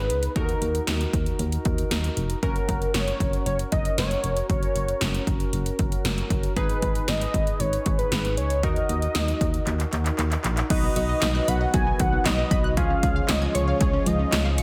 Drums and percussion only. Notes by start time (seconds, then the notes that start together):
0.10 closed hi-hat
0.23 closed hi-hat
0.36 kick, closed hi-hat
0.49 closed hi-hat
0.62 closed hi-hat
0.75 closed hi-hat
0.87 snare, closed hi-hat
1.01 closed hi-hat
1.13 kick, closed hi-hat
1.26 closed hi-hat
1.39 closed hi-hat
1.52 closed hi-hat
1.65 kick, closed hi-hat
1.78 closed hi-hat
1.91 snare, closed hi-hat
2.04 closed hi-hat
2.17 closed hi-hat
2.30 closed hi-hat
2.43 kick, closed hi-hat
2.56 closed hi-hat
2.69 kick, closed hi-hat
2.82 closed hi-hat
2.94 snare, closed hi-hat
3.08 closed hi-hat
3.20 kick, closed hi-hat
3.33 closed hi-hat
3.46 closed hi-hat
3.59 closed hi-hat
3.72 kick, closed hi-hat
3.85 closed hi-hat
3.98 snare, closed hi-hat
4.11 closed hi-hat
4.24 closed hi-hat
4.37 closed hi-hat
4.50 kick, closed hi-hat
4.63 closed hi-hat
4.76 closed hi-hat
4.88 closed hi-hat
5.01 snare, closed hi-hat
5.15 closed hi-hat
5.27 kick, closed hi-hat
5.40 closed hi-hat
5.53 closed hi-hat
5.66 closed hi-hat
5.79 kick, closed hi-hat
5.92 closed hi-hat
6.05 snare, closed hi-hat
6.18 closed hi-hat
6.30 kick, closed hi-hat
6.43 closed hi-hat
6.57 kick, closed hi-hat
6.69 closed hi-hat
6.82 kick, closed hi-hat
6.95 closed hi-hat
7.08 snare, closed hi-hat
7.21 closed hi-hat
7.34 kick, closed hi-hat
7.47 closed hi-hat
7.60 closed hi-hat
7.73 closed hi-hat
7.86 kick, closed hi-hat
7.99 closed hi-hat
8.12 snare, closed hi-hat
8.25 closed hi-hat
8.37 closed hi-hat
8.50 closed hi-hat
8.63 kick, closed hi-hat
8.76 closed hi-hat
8.89 closed hi-hat
9.02 closed hi-hat
9.15 snare, closed hi-hat
9.28 closed hi-hat
9.41 kick, closed hi-hat
9.54 closed hi-hat
9.67 clap, closed hi-hat
9.80 clap, closed hi-hat
9.93 clap, closed hi-hat
10.06 clap, closed hi-hat
10.19 clap, closed hi-hat
10.32 clap, closed hi-hat
10.44 clap, closed hi-hat
10.57 clap, closed hi-hat
10.70 kick, closed hi-hat, crash
10.96 closed hi-hat
11.22 snare, clap, closed hi-hat
11.48 closed hi-hat
11.74 kick, closed hi-hat
11.99 kick, closed hi-hat
12.26 snare, clap, closed hi-hat
12.51 kick, closed hi-hat
12.77 kick, closed hi-hat
13.03 kick, closed hi-hat
13.29 snare, clap, closed hi-hat
13.55 closed hi-hat
13.81 kick, closed hi-hat
14.06 closed hi-hat
14.32 snare, clap, closed hi-hat
14.58 closed hi-hat